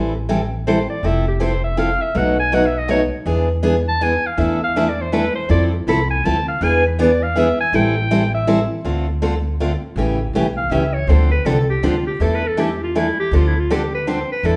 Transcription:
Already playing: upright bass A1, steel-string acoustic guitar E3 G3 C4 E4 A4
0.29 steel-string acoustic guitar E3 G3 C4 E4 A4
0.67 steel-string acoustic guitar E3 G3 C4 E4 A4, clarinet C5
0.90 clarinet D5
1.03 upright bass F1, steel-string acoustic guitar F3 C4 E4 A4, clarinet E5
1.28 clarinet G4
1.40 steel-string acoustic guitar F3 C4 E4 A4, clarinet C5
1.64 clarinet E5
1.77 steel-string acoustic guitar F3 C4 E4 A4, clarinet F5
2.02 clarinet E5
2.15 upright bass B1, steel-string acoustic guitar B2 F#3 A3 D#4 F#4, clarinet F#5
2.40 clarinet G#5
2.52 steel-string acoustic guitar B2 F#3 A3 D#4 F#4, clarinet F#5
2.66 clarinet E5
2.78 clarinet D#5
2.88 steel-string acoustic guitar B2 F#3 A3 D#4 F#4, clarinet C#5
3.26 upright bass E2, steel-string acoustic guitar E3 B3 D4 G#4
3.63 steel-string acoustic guitar E3 B3 D4 G#4
3.89 clarinet A5
4.01 steel-string acoustic guitar E3 B3 D4 G#4, clarinet G#5
4.26 clarinet F5
4.37 upright bass E2, steel-string acoustic guitar E3 A3 D4 E4 A4, clarinet E5
4.64 clarinet F5
4.76 steel-string acoustic guitar E3 A3 D4 E4 A4, clarinet E5
4.89 clarinet D5
5.02 clarinet C5
5.12 steel-string acoustic guitar E3 A3 D4 E4 A4, clarinet B4
5.35 clarinet C5
5.49 upright bass F2, steel-string acoustic guitar F3 C4 E4 A4, clarinet D5
5.87 upright bass C2, steel-string acoustic guitar F3 C4 E4 A4, clarinet B5
6.10 clarinet G#5
6.24 upright bass D2, steel-string acoustic guitar F3 C4 E4 A4, clarinet A5
6.48 clarinet F5
6.61 upright bass E2, steel-string acoustic guitar E3 B3 D4 G#4, clarinet G#5
6.87 clarinet B4
6.99 steel-string acoustic guitar E3 B3 D4 G#4, clarinet D5
7.23 clarinet F5
7.36 steel-string acoustic guitar E3 B3 D4 G#4, clarinet E5
7.61 clarinet G#5
7.73 upright bass A1, steel-string acoustic guitar E3 G3 C4 E4 A4, clarinet G5
8.11 steel-string acoustic guitar E3 G3 C4 E4 A4
8.35 clarinet E5
8.47 steel-string acoustic guitar E3 G3 C4 E4 A4
8.85 upright bass D2, steel-string acoustic guitar D3 A3 C4 F4 A4
9.22 steel-string acoustic guitar D3 A3 C4 F4 A4
9.60 steel-string acoustic guitar D3 A3 C4 F4 A4
9.96 upright bass A1, steel-string acoustic guitar C#3 E3 A3 C#4 G4
10.33 upright bass B1, steel-string acoustic guitar C#3 E3 A3 C#4 G4
10.57 clarinet F5
10.70 upright bass C#2, steel-string acoustic guitar C#3 E3 A3 C#4 G4, clarinet E5
10.94 clarinet C#5
11.07 upright bass D2, steel-string acoustic guitar D3 F3 C4 D4 A4, clarinet C5
11.31 clarinet B4
11.45 upright bass C2, steel-string acoustic guitar D3 F3 C4 D4 A4, clarinet A4
11.70 clarinet G4
11.82 upright bass D2, steel-string acoustic guitar D3 F3 C4 D4 A4, clarinet F4
12.07 clarinet G4
12.20 upright bass E2, steel-string acoustic guitar E3 A3 D4 E4 A4, clarinet A4
12.35 clarinet B4
12.48 clarinet A4
12.57 steel-string acoustic guitar E3 A3 D4 E4 A4, clarinet G4
12.83 clarinet F4
12.95 steel-string acoustic guitar E3 A3 D4 E4 A4, clarinet E4
13.20 clarinet G4
13.31 upright bass D2, steel-string acoustic guitar D3 F3 C4 D4 A4
13.36 clarinet F4
13.47 clarinet E4
13.60 clarinet F4
13.70 steel-string acoustic guitar D3 F3 C4 D4 A4, clarinet G4
13.95 clarinet B4
14.07 steel-string acoustic guitar D3 F3 C4 D4 A4, clarinet C5
14.32 clarinet B4
14.43 upright bass E2, steel-string acoustic guitar E3 A3 D4 E4 A4, clarinet A4

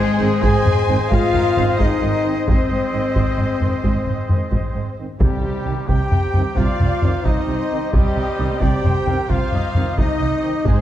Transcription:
Already playing: french horn section G#3, trumpet G#3, woodwind section C4 G#4 C5 D#5, violin section G#4, flute G#4, viola section C5
0.19 double bass section G#1, cello section G#2, trombone section D#3 C4
0.42 double bass section G#1, cello section G#2, trumpet G#4, french horn section G#4, viola section C5, flute G#5, violin section G#5, taiko
0.66 double bass section G#1, cello section G#2, taiko low-mid
0.88 double bass section G#1, cello section G#2, trombone section D#3 C4, taiko low-mid
1.11 double bass section G#1, cello section G#2, french horn section F4, trumpet F4, viola section G#4, violin section F5, flute F5, taiko
1.34 double bass section G#1, cello section G#2, viola section A#4, taiko low-mid
1.57 double bass section G#1, cello section G#2, trombone section D#3 C4, viola section C5, taiko low-mid
1.79 double bass section G#1, cello section G#2, trumpet D#4, french horn section D#4, viola section G#4, violin section D#5, flute D#5, taiko
2.02 double bass section G#1, cello section G#2, viola section A#4
2.24 trombone section D#3 C4, viola section C5
2.47 double bass section G#1, cello section G#2, trumpet C4, french horn section C4, flute C5, violin section C5, viola section D#5, taiko
2.70 double bass section G#1, cello section G#2
2.93 double bass section G#1, cello section G#2, trombone section D#3 C4
3.15 double bass section G#1, cello section G#2, taiko
3.38 double bass section G#1, cello section G#2, taiko low-mid
3.60 double bass section G#1, cello section G#2, trombone section D#3 C4, taiko low-mid
3.83 double bass section G#1, cello section G#2, taiko
4.06 double bass section G#1, cello section G#2, taiko low-mid
4.29 double bass section G#1, cello section G#2, trombone section D#3 C4, taiko low-mid
4.52 double bass section G#1, cello section G#2, taiko
4.74 double bass section G#1, cello section G#2
4.98 trombone section D#3 C4
5.19 double bass section C2, cello section C3, timpani C3, trumpet G3, french horn section G3, woodwind section C4 D#4 G4 C5, flute G4, violin section G4, taiko
5.42 double bass section C2, cello section C3
5.65 double bass section C2, cello section C3, trombone section D#3 C4
5.88 double bass section C2, cello section C3, french horn section G4, trumpet G4, flute G5, violin section G5, taiko
6.10 double bass section C2, cello section C3, taiko low-mid
6.33 double bass section C2, cello section C3, trombone section D#3 C4, taiko low-mid
6.55 double bass section C2, cello section C3, french horn section F4, trumpet F4, viola section D5, violin section F5, flute F5, taiko
6.78 double bass section C2, cello section C3, taiko low-mid
7.02 double bass section C2, cello section C3, trombone section D#3 C4, taiko low-mid
7.24 double bass section C2, cello section C3, french horn section D#4, trumpet D#4, viola section C5, violin section D#5, flute D#5, taiko
7.47 double bass section C2, cello section C3
7.71 trombone section D#3 C4
7.92 double bass section C2, cello section C3, french horn section G3, trumpet G3, violin section G4, flute G4, viola section D#5, taiko
8.15 double bass section C2, cello section C3
8.38 double bass section C2, cello section C3, trombone section D#3 C4
8.61 double bass section C2, cello section C3, trumpet G4, french horn section G4, viola section D5, violin section G5, flute G5, taiko
8.84 double bass section C2, cello section C3, viola section C5, taiko low-mid
9.07 double bass section C2, cello section C3, trombone section D#3 C4, viola section A#4, taiko low-mid
9.29 double bass section C2, cello section C3, french horn section F4, trumpet F4, viola section C5, flute F5, violin section F5, taiko
9.52 double bass section C2, cello section C3, viola section D#5, taiko low-mid
9.75 double bass section C2, cello section C3, trombone section D#3 C4, viola section D#5, taiko low-mid
9.98 double bass section C2, cello section C3, french horn section D#4, trumpet D#4, violin section D#5, flute D#5, taiko
10.21 double bass section C2, cello section C3
10.43 trombone section D#3 C4
10.66 double bass section G#1, cello section G#2, trumpet G#3, french horn section G#3, woodwind section C4 D#4 C5 D#5, flute G#4, violin section G#4, viola section C5, taiko

